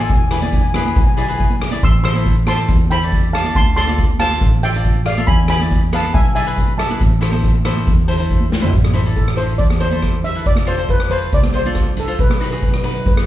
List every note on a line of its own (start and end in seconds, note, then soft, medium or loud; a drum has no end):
0.04 0.10 G#5 medium
0.10 0.92 E1 loud
0.10 0.17 G#5 medium
0.10 kick loud
0.10 closed hi-hat medium
0.18 0.25 G#5 medium
0.28 0.38 G#4 medium
0.28 0.38 B4 medium
0.28 0.32 G#5 soft
0.28 cross-stick medium
0.28 closed hi-hat medium
0.28 low conga medium
0.32 0.38 E4 medium
0.32 0.40 G#5 medium
0.42 0.62 E4 medium
0.42 0.62 G#4 medium
0.42 0.62 D5 medium
0.42 0.46 G#5 medium
0.42 closed hi-hat medium
0.42 high conga medium
0.48 0.53 G#5 medium
0.53 0.60 G#5 medium
0.53 kick medium
0.53 closed hi-hat medium
0.53 low conga medium
0.61 0.68 G#5 medium
0.70 0.76 G#5 medium
0.74 1.01 E4 medium
0.74 1.01 G#4 medium
0.74 1.01 B4 medium
0.74 0.85 G#5 medium
0.74 cross-stick medium
0.74 closed hi-hat medium
0.74 high conga medium
0.74 low conga medium
0.85 0.92 G#5 soft
0.85 closed hi-hat medium
0.85 high conga medium
0.93 1.79 B1 loud
0.93 0.99 G#5 medium
0.93 kick loud
0.93 closed hi-hat medium
1.00 1.06 G#5 soft
1.07 1.13 G#5 medium
1.14 1.24 E4 medium
1.14 1.24 G#4 medium
1.14 1.24 D5 medium
1.14 1.20 G#5 soft
1.14 closed hi-hat medium
1.21 1.29 G#5 medium
1.28 1.54 E4 medium
1.28 1.55 G#4 medium
1.28 1.54 B4 medium
1.28 1.36 G#5 medium
1.28 closed hi-hat medium
1.38 1.44 G#5 medium
1.38 kick medium
1.38 closed hi-hat medium
1.45 1.52 G#5 medium
1.50 high conga medium
1.60 cross-stick medium
1.60 closed hi-hat medium
1.60 low conga medium
1.71 1.82 E4 medium
1.71 1.82 G#4 medium
1.71 1.82 D5 medium
1.71 closed hi-hat medium
1.71 high conga medium
1.83 2.65 A1 loud
1.83 2.03 C6 medium
1.83 2.03 E6 loud
1.83 kick loud
1.83 closed hi-hat medium
2.03 2.11 E4 medium
2.03 2.11 A4 medium
2.03 2.11 C5 medium
2.03 2.44 C6 medium
2.03 2.44 E6 loud
2.03 cross-stick medium
2.03 closed hi-hat medium
2.03 low conga medium
2.14 2.35 E4 medium
2.14 2.35 A4 medium
2.14 2.35 C5 medium
2.14 closed hi-hat medium
2.14 high conga medium
2.26 kick medium
2.26 closed hi-hat medium
2.46 2.73 E4 medium
2.46 2.74 A4 medium
2.46 2.74 C5 medium
2.46 2.87 A5 medium
2.46 2.92 C6 loud
2.46 cross-stick medium
2.46 closed hi-hat medium
2.46 high conga medium
2.58 closed hi-hat medium
2.68 3.51 E2 medium
2.68 kick loud
2.68 closed hi-hat medium
2.90 2.98 E4 medium
2.90 2.97 A4 medium
2.90 2.98 C5 medium
2.90 3.31 G5 medium
2.90 3.31 B5 loud
2.90 closed hi-hat medium
3.03 3.28 E4 medium
3.03 3.28 A4 medium
3.03 3.28 D5 medium
3.03 closed hi-hat medium
3.12 kick medium
3.12 closed hi-hat medium
3.33 3.53 F5 medium
3.33 3.54 A5 medium
3.33 cross-stick medium
3.33 closed hi-hat medium
3.33 low conga medium
3.44 3.55 E4 medium
3.44 3.55 A4 medium
3.44 3.55 D5 medium
3.44 closed hi-hat medium
3.44 high conga medium
3.55 4.38 D2 loud
3.55 3.75 A5 medium
3.55 3.75 C6 loud
3.55 kick loud
3.55 closed hi-hat medium
3.76 3.84 F4 medium
3.76 3.84 A4 medium
3.76 3.84 D5 medium
3.76 4.16 A5 medium
3.76 4.17 C6 loud
3.76 cross-stick medium
3.76 closed hi-hat medium
3.87 4.07 F4 medium
3.87 4.07 A4 medium
3.87 4.07 D5 medium
3.87 closed hi-hat medium
3.87 high conga medium
3.98 kick medium
3.98 closed hi-hat medium
4.19 4.46 F4 medium
4.19 4.46 A4 medium
4.19 4.47 C5 medium
4.19 4.60 F5 medium
4.19 4.60 A5 loud
4.19 cross-stick medium
4.19 closed hi-hat medium
4.19 high conga medium
4.19 low conga medium
4.30 closed hi-hat medium
4.30 high conga medium
4.41 5.24 A1 medium
4.41 kick loud
4.41 closed hi-hat medium
4.63 4.71 F4 medium
4.63 4.71 A4 medium
4.63 4.70 D5 medium
4.63 5.04 E5 medium
4.63 5.08 G5 medium
4.63 closed hi-hat medium
4.74 5.01 F4 medium
4.74 5.01 A4 medium
4.74 5.01 D5 medium
4.74 closed hi-hat medium
4.84 kick medium
4.84 closed hi-hat medium
5.05 5.26 D5 medium
5.05 5.29 F5 medium
5.05 cross-stick medium
5.05 closed hi-hat medium
5.05 low conga medium
5.17 5.28 F4 medium
5.17 5.28 A4 medium
5.17 5.28 E5 medium
5.17 closed hi-hat medium
5.17 high conga medium
5.27 6.10 E2 loud
5.27 5.48 G#5 medium
5.27 5.47 B5 loud
5.27 kick loud
5.27 closed hi-hat medium
5.48 5.56 E4 medium
5.48 5.56 G#4 medium
5.48 5.57 B4 medium
5.48 5.90 G#5 medium
5.48 5.90 B5 medium
5.48 cross-stick medium
5.48 closed hi-hat medium
5.48 low conga medium
5.60 5.80 E4 medium
5.60 5.80 G#4 medium
5.60 5.80 D5 medium
5.60 closed hi-hat medium
5.60 high conga medium
5.71 kick medium
5.71 closed hi-hat medium
5.91 6.19 E4 medium
5.91 6.19 G#4 medium
5.91 6.19 B4 medium
5.91 6.14 F5 medium
5.91 cross-stick medium
5.91 closed hi-hat medium
5.91 high conga medium
5.91 low conga medium
5.95 6.14 A5 medium
6.02 closed hi-hat medium
6.02 high conga medium
6.14 6.97 B1 loud
6.14 6.24 E5 medium
6.14 6.24 G#5 medium
6.14 kick loud
6.14 closed hi-hat medium
6.35 6.42 E4 medium
6.35 6.43 G#4 medium
6.35 6.43 D5 medium
6.35 6.76 E5 medium
6.35 6.80 G#5 medium
6.35 closed hi-hat medium
6.47 6.73 E4 medium
6.47 6.73 G#4 medium
6.47 6.73 B4 medium
6.47 closed hi-hat medium
6.58 kick medium
6.58 closed hi-hat medium
6.77 8.47 E5 medium
6.77 8.47 A5 medium
6.77 cross-stick medium
6.77 closed hi-hat medium
6.77 low conga medium
6.89 7.01 E4 medium
6.89 7.01 G#4 medium
6.89 7.01 B4 medium
6.89 closed hi-hat medium
6.89 high conga medium
7.01 7.83 A1 loud
7.01 kick loud
7.01 closed hi-hat medium
7.21 7.28 E4 medium
7.21 7.29 A4 medium
7.21 7.29 C5 medium
7.21 cross-stick medium
7.21 closed hi-hat medium
7.21 low conga medium
7.32 7.52 E4 medium
7.32 7.52 A4 medium
7.32 7.52 C5 medium
7.32 closed hi-hat medium
7.32 high conga medium
7.42 kick medium
7.42 closed hi-hat medium
7.42 low conga medium
7.65 7.91 E4 medium
7.65 7.91 A4 medium
7.65 7.91 C5 medium
7.65 cross-stick medium
7.65 closed hi-hat medium
7.65 high conga medium
7.65 low conga medium
7.76 closed hi-hat medium
7.76 high conga medium
7.87 8.70 E2 medium
7.87 kick loud
7.87 closed hi-hat medium
8.08 8.15 E4 medium
8.08 8.15 A4 medium
8.08 8.15 C5 loud
8.08 closed hi-hat medium
8.18 8.45 E4 medium
8.18 8.45 A4 medium
8.18 8.45 C5 loud
8.18 closed hi-hat medium
8.30 kick medium
8.30 closed hi-hat medium
8.40 high conga medium
8.50 snare medium
8.50 low conga medium
8.61 8.72 E4 medium
8.61 8.73 A4 medium
8.61 8.73 C5 medium
8.61 floor tom loud
8.61 high conga medium
8.73 9.13 A1 loud
8.73 kick loud
8.73 closed hi-hat medium
8.84 cross-stick medium
8.84 high conga medium
8.94 9.01 E4 medium
8.94 9.01 A4 medium
8.94 9.01 C5 loud
8.94 closed hi-hat medium
9.06 9.25 E4 medium
9.06 9.26 A4 medium
9.06 9.26 D5 medium
9.06 closed hi-hat medium
9.16 9.56 A1 medium
9.16 9.26 A4 medium
9.16 kick medium
9.16 closed hi-hat medium
9.28 cross-stick medium
9.36 9.64 E4 medium
9.36 9.64 A4 medium
9.36 9.64 C5 medium
9.36 9.60 C5 medium
9.36 closed hi-hat medium
9.36 low conga medium
9.49 closed hi-hat medium
9.58 10.42 E2 medium
9.58 9.81 D5 medium
9.58 kick loud
9.58 closed hi-hat medium
9.70 cross-stick medium
9.70 high conga medium
9.80 9.88 E4 medium
9.80 9.88 A4 medium
9.80 9.88 C5 medium
9.80 10.26 C5 medium
9.80 closed hi-hat medium
9.91 10.18 E4 medium
9.91 10.18 A4 medium
9.91 10.18 C5 medium
9.91 closed hi-hat medium
9.91 high conga medium
9.91 low conga medium
10.02 kick medium
10.02 cross-stick medium
10.02 closed hi-hat medium
10.23 10.47 E5 medium
10.23 closed hi-hat medium
10.23 low conga medium
10.35 10.46 E4 medium
10.35 10.46 A4 medium
10.35 10.46 B4 medium
10.35 closed hi-hat medium
10.46 10.85 F1 loud
10.46 10.69 D5 loud
10.46 kick loud
10.46 closed hi-hat medium
10.56 cross-stick medium
10.56 high conga medium
10.67 10.74 F4 medium
10.67 10.74 A4 medium
10.67 10.74 C5 medium
10.67 10.88 C5 medium
10.67 closed hi-hat medium
10.78 10.98 F4 medium
10.78 10.98 A4 medium
10.78 10.98 C5 medium
10.78 closed hi-hat medium
10.88 11.28 F1 medium
10.88 11.12 B4 medium
10.88 kick medium
10.88 closed hi-hat medium
11.00 cross-stick medium
11.10 11.37 F4 medium
11.10 11.37 A4 medium
11.10 11.37 B4 medium
11.10 11.33 C5 medium
11.10 closed hi-hat medium
11.10 low conga medium
11.22 closed hi-hat medium
11.32 12.15 C2 medium
11.32 11.54 D5 loud
11.32 kick loud
11.32 closed hi-hat medium
11.43 cross-stick medium
11.43 high conga medium
11.53 11.61 F4 medium
11.53 11.61 A4 medium
11.53 11.61 C5 medium
11.53 11.99 C5 medium
11.53 closed hi-hat medium
11.65 11.91 F4 medium
11.65 11.92 A4 medium
11.65 11.92 D5 medium
11.65 closed hi-hat medium
11.65 high conga medium
11.65 low conga medium
11.75 kick medium
11.75 cross-stick medium
11.75 closed hi-hat medium
11.96 12.09 A4 medium
11.96 closed hi-hat medium
11.96 low conga medium
12.08 12.18 F4 medium
12.08 12.19 A4 medium
12.08 12.19 C5 medium
12.08 closed hi-hat medium
12.19 12.58 B1 loud
12.19 12.27 B4 medium
12.19 kick loud
12.19 closed hi-hat medium
12.29 12.35 B4 medium
12.29 cross-stick medium
12.29 high conga medium
12.36 12.42 B4 medium
12.40 12.47 D#4 medium
12.40 12.47 F#4 medium
12.40 12.48 B4 medium
12.40 12.50 B4 medium
12.40 closed hi-hat medium
12.51 12.71 D#4 medium
12.51 12.71 F#4 medium
12.51 12.71 G#4 medium
12.51 12.56 B4 medium
12.51 closed hi-hat medium
12.57 12.62 B4 soft
12.62 13.02 B1 medium
12.62 12.71 B4 medium
12.62 kick medium
12.62 closed hi-hat medium
12.72 12.77 B4 soft
12.72 cross-stick medium
12.78 12.83 B4 medium
12.84 13.10 D#4 medium
12.84 13.10 F#4 medium
12.84 13.10 B4 medium
12.84 12.93 B4 soft
12.84 closed hi-hat medium
12.84 low conga medium
12.94 12.98 B4 medium
12.94 closed hi-hat medium
12.99 13.06 B4 soft
13.06 13.26 F#2 loud
13.06 13.15 B4 medium
13.06 kick loud
13.06 closed hi-hat medium
13.15 cross-stick medium
13.15 high conga medium